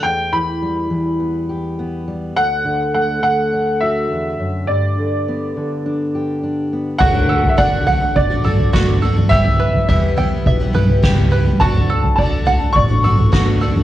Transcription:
<<
  \new Staff \with { instrumentName = "Upright piano" } { \time 4/4 \key d \major \tempo 4 = 104 g''8 b''2. r8 | fis''4 fis''8 fis''4 e''4. | d''2. r4 | fis''8.~ fis''32 e''32 fis''4 d''4. r8 |
e''2. r4 | a''4 a''4 cis'''4. r8 | }
  \new Staff \with { instrumentName = "Five-string banjo" } { \time 4/4 \key d \major r1 | r1 | r1 | fis'8 a'8 d''8 fis''8 d''8 a'8 fis'8 a'8 |
g'8 b'8 e''8 g''8 e''8 b'8 g'8 b'8 | fis'8 a'8 d''8 fis''8 d''8 a'8 fis'8 a'8 | }
  \new Staff \with { instrumentName = "Twelve-string acoustic guitar" } { \time 4/4 \key d \major r1 | r1 | r1 | <d a d' fis'>16 <a d' fis'>8. <d a d' fis'>8 <d a d' fis'>16 <a d' fis'>8 <a d' fis'>16 <d a d' fis'>8 <d a d' fis'>8 <d a d' fis'>16 <a d' fis'>16 |
<e, b, e g b g'>16 <e g b g'>8. <e, b, e g b g'>8 <e g b g'>8. <e g b g'>16 <e g b g'>8 <e, b, e g b g'>8 <e g b g'>16 <e g b g'>16 | <d a d' fis'>16 <a d' fis'>8. <d a d' fis'>8 <d a d' fis'>16 <a d' fis'>8 <a d' fis'>16 <d a d' fis'>16 <a d' fis'>16 <d a d' fis'>8 <d a d' fis'>16 <a d' fis'>16 | }
  \new Staff \with { instrumentName = "Steel-string acoustic guitar" } { \clef bass \time 4/4 \key d \major << { r4 g4 b8 g'8 b8 g8 | r4 a4 d'8 fis'4. | r4 b4 d'8 g'8 d'8 b8 | r1 |
r1 | r1 | } \\ { e,8 e4 e2~ e8 | d,8 d4 d4. e,8 fis,8 | g,8 d4 d2~ d8~ | d1 |
r1 | r1 | } >> }
  \new Staff \with { instrumentName = "Upright bass" } { \clef bass \time 4/4 \key d \major r1 | r1 | r1 | d,4 d,4 a,,4 d,4 |
e,4 e,4 b,,4 cis,4 | d,4 d,4 a,,4 d,4 | }
  \new DrumStaff \with { instrumentName = "Drums" } \drummode { \time 4/4 r4 r4 r4 r4 | r4 r4 r4 r4 | r4 r4 r4 r4 | <cymc bd tomfh>16 tomfh8 tomfh16 bd8 tomfh8 <bd tomfh>8 toml16 tomfh16 <bd sn toml>8. toml16 |
<bd tomfh>16 tomfh8 tomfh16 bd8 tomfh8 <bd tomfh>8 toml16 tomfh16 <bd sn toml>8. toml16 | <bd tomfh>16 tomfh8 tomfh16 bd8 tomfh8 <bd tomfh>8 toml16 tomfh16 <bd sn toml>8. toml16 | }
>>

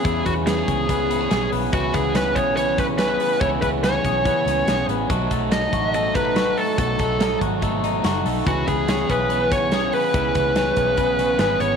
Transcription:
<<
  \new Staff \with { instrumentName = "Lead electric guitar" } { \time 4/4 \key cis \minor \tempo 4 = 143 gis'8 fis'8 gis'2~ gis'8 r8 | fis'8 gis'8 b'8 cis''8 cis''8 b'8 b'4 | cis''8 b'8 cis''2~ cis''8 r8 | r4 dis''4 dis''8 b'4 a'8 |
a'4. r2 r8 | fis'8 gis'4 b'4 cis''4 b'8~ | b'2. b'8 cis''8 | }
  \new Staff \with { instrumentName = "Clean electric guitar" } { \time 4/4 \key cis \minor <e b cis' gis'>8 b8 b16 cis'16 gis'8 b8 b16 cis'16 gis'8 b8 | e8 b8 cis'8 gis'8 b8 cis'8 fis'16 gis'16 b8 | e8 b8 b16 cis'16 gis'8 b8 cis'8 gis'8 b8 | fis8 a8 dis'8 fis'8 a8 dis'8 fis'8 a8 |
fis8 a8 dis'8 fis'8 a8 dis'8 fis'8 a8 | e8 b8 cis'8 gis'8 b8 cis'8 gis'8 b8 | e8 b8 cis'8 gis'8 b8 cis'8 gis'8 b8 | }
  \new Staff \with { instrumentName = "Overdriven electric guitar" } { \time 4/4 \key cis \minor <e b cis' gis'>8 <b cis' gis'>8 <e b cis' gis'>4 <e b cis' gis'>4 <e b cis' gis'>4 | <cis e b cis' gis'>8 <b cis' gis'>8 <e b cis' gis'>4 <cis e b cis' gis'>4 <e b cis' gis'>4 | <cis e b cis' gis'>8 <b cis' gis'>8 <e b cis' gis'>4 <cis e b cis' gis'>4 <e b cis' gis'>4 | <b, fis a dis' a'>8 <a dis' a'>8 <fis a dis' a'>8 <a dis' a'>8 <b, fis a dis' a'>4 <fis a dis' a'>4 |
<b, fis a dis' a'>8 <a dis' a'>8 <fis a dis' a'>4 <b, fis a dis' a'>4 <fis a dis' a'>8 <a dis' a'>8 | <cis e b cis' gis'>8 <b cis' gis'>8 <e b cis' gis'>8 <b cis' gis'>8 <cis e b cis' gis'>4 <e b cis' gis'>8 <b cis' gis'>8 | <cis e b cis' gis'>8 <b cis' gis'>8 <e b cis' gis'>4 <cis e b cis' gis'>4 <e b cis' gis'>4 | }
  \new Staff \with { instrumentName = "Fingered electric bass" } { \clef bass \time 4/4 \key cis \minor e,8 e,4 cis,4. b,,8 b,,8 | cis,8 cis,4 b,,2 r8 | cis,8 cis,4 b,,8. r16 cis,8 b,,8 a,,8 | b,,8 b,,4 a,,2 r8 |
b,,8 b,,4 gis,,4. fis,,8 b,,8 | cis,8 cis,4 b,,2 r8 | cis,8 cis,4 b,,4. gis,,8 gis,,8 | }
  \new DrumStaff \with { instrumentName = "Drums" } \drummode { \time 4/4 <hh bd>8 <hh bd>8 <hh sn>8 <hh bd>8 <hh bd>8 hh8 <hh sn>8 hho8 | <hh bd>8 <hh bd>8 <hh sn>8 <hh bd>8 hh8 <hh bd sn>8 <hh sn>8 hho8 | <hh bd>8 <hh bd>8 <hh sn>8 <hh bd>8 <hh bd>8 <hh sn>8 <hh sn>8 hh8 | <hh bd>8 <hh bd>8 <hh sn>8 <hh bd>8 hh8 <hh bd sn>8 <hh sn>8 hho8 |
<hh bd>8 <hh bd>8 <hh sn>8 <hh bd>8 <hh bd>8 hh8 <hh sn>8 hho8 | <hh bd>8 <hh bd>8 <hh sn>8 <hh bd>8 hh8 <hh bd>8 <hh sn>8 hho8 | <hh bd>8 <hh bd>8 <hh sn>8 <hh bd>8 <hh bd>8 <hh sn>8 <hh sn>8 hh8 | }
>>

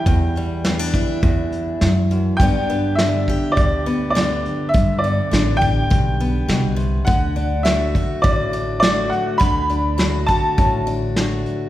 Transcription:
<<
  \new Staff \with { instrumentName = "Upright piano" } { \time 4/4 \key g \major \tempo 4 = 103 g''2. r4 | g''4 e''4 d''4 d''4 | e''8 d''4 g''2 r8 | fis''4 e''4 d''4 d''8 fis''8 |
b''4. a''4 r4. | }
  \new Staff \with { instrumentName = "Steel-string acoustic guitar" } { \time 4/4 \key g \major << { <g e'>8 g8 b16 d'16 e'2~ e'8 | <d b d' g'>8 b8 d'8 g'4 b8 g'4 | r8 b8 d'8 g'4 b4. | r8 d'8 fis'8 fis'4 d'8 fis'4 |
r8 d'8 fis'8 fis'4 d'8 fis'4 | } \\ { e,4 e4 e,4 e,8 fis,8 | g,4 d4 g,4 d4 | g,4 d4 g,4 b,8 c8 | d4 a4 a,4 a4 |
d4 a4 a,4 a4 | } >> }
  \new Staff \with { instrumentName = "Upright bass" } { \clef bass \time 4/4 \key g \major e,2 e,4 fis,4 | g,2 d,2 | g,4 a,,4 b,,4 c,4 | d,2 a,,2 |
d,2 a,,2 | }
  \new DrumStaff \with { instrumentName = "Drums" } \drummode { \time 4/4 <hh bd>8 hh8 <hh sn>8 <hh bd>8 <hh bd>8 hh8 <hh sn>8 hh8 | <hh bd>8 hh8 <hh sn>8 <hh bd>8 <hh bd>8 hh8 <hh sn>8 hh8 | <hh bd>8 hh8 <hh sn>8 <hh bd>8 <hh bd>8 hh8 <hh sn>8 hh8 | <hh bd>8 hh8 <hh sn>8 <hh bd>8 <hh bd>8 hh8 <hh sn>8 hh8 |
<hh bd>8 hh8 <hh sn>8 <hh bd>8 <hh bd>8 hh8 <hh sn>8 hh8 | }
>>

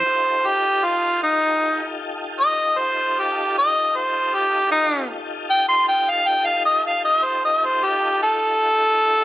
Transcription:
<<
  \new Staff \with { instrumentName = "Harmonica" } { \time 12/8 \key f \major \tempo 4. = 52 c''8 g'8 f'8 ees'4 r8 ees''8 c''8 g'8 ees''8 c''8 g'8 | ees'8 r8 g''16 c'''16 g''16 f''16 g''16 f''16 ees''16 f''16 ees''16 c''16 ees''16 c''16 g'8 a'4. | }
  \new Staff \with { instrumentName = "Tonewheel organ" } { \time 12/8 \key f \major <ees' f' g' a'>1. | <ees' f' g' a'>1. | }
>>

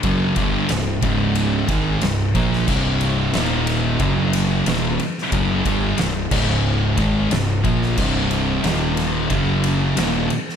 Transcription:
<<
  \new Staff \with { instrumentName = "Distorted electric guitar" } { \clef bass \time 4/4 \key ees \major \tempo 4 = 91 <fis, des fis>8 <g, d g>8 <c, g,>8 <des, aes, des>4 <aes, ees aes>8 <c, g,>8 <bes, f bes>8 | <c, g, c>4 <ees, bes, ees>4 <fis, cis fis>4 <ees, bes, ees>8 r8 | <fis, des fis>8 <g, d g>8 <c, g,>8 <des, aes, des>4 <aes, ees aes>8 <c, g,>8 <bes, f bes>8 | <c, g, c>4 <ees, bes, ees>4 <fis, cis fis>4 <ees, bes, ees>8 r8 | }
  \new Staff \with { instrumentName = "Distorted electric guitar" } { \clef bass \time 4/4 \key ees \major <fis, des fis>8 <g, d g>8 <c, g,>8 <des, aes, des>4 <aes, ees aes>8 <c, g,>8 <bes, f bes>8 | <c, g, c>4 <ees, bes, ees>4 <fis, cis fis>4 <ees, bes, ees>8 r8 | <fis, des fis>8 <g, d g>8 <c, g,>8 <des, aes, des>4 <aes, ees aes>8 <c, g,>8 <bes, f bes>8 | <c, g, c>4 <ees, bes, ees>4 <fis, cis fis>4 <ees, bes, ees>8 r8 | }
  \new Staff \with { instrumentName = "Distorted electric guitar" } { \clef bass \time 4/4 \key ees \major <fis, des fis>8 <g, d g>8 <c, g,>8 <des, aes, des>4 <aes, ees aes>8 <c, g,>8 <bes, f bes>8 | <c, g, c>4 <ees, bes, ees>4 <fis, cis fis>4 <ees, bes, ees>8 r8 | <fis, des fis>8 <g, d g>8 <c, g,>8 <des, aes, des>4 <aes, ees aes>8 <c, g,>8 <bes, f bes>8 | <c, g, c>4 <ees, bes, ees>4 <fis, cis fis>4 <ees, bes, ees>8 r8 | }
  \new Staff \with { instrumentName = "Fingered electric bass" } { \clef bass \time 4/4 \key ees \major fis,,8 g,,8 c,,8 des,,4 aes,,8 c,,8 bes,,8 | c,,4 ees,,4 fis,,4 ees,,8 r8 | fis,,8 g,,8 c,,8 des,,4 aes,,8 c,,8 bes,,8 | c,,4 ees,,4 fis,,4 ees,,8 r8 | }
  \new DrumStaff \with { instrumentName = "Drums" } \drummode { \time 4/4 <bd cymr>8 <bd cymr>8 <cymr sn>8 <bd cymr>8 cymr8 <bd cymr sn>8 <cymr sn>8 <bd cymr>16 sn16 | <cymc bd>8 cymr8 <cymr sn>8 <cymr sn>8 <bd cymr>8 <cymr sn>8 <cymr sn>8 cymr16 sn16 | <bd cymr>8 <bd cymr>8 <cymr sn>8 <cymc bd>8 r8 <bd cymr sn>8 <cymr sn>8 <bd cymr>16 sn16 | <cymc bd>8 cymr8 <cymr sn>8 <cymr sn>8 <bd cymr>8 cymr8 <cymr sn>8 cymr16 sn16 | }
>>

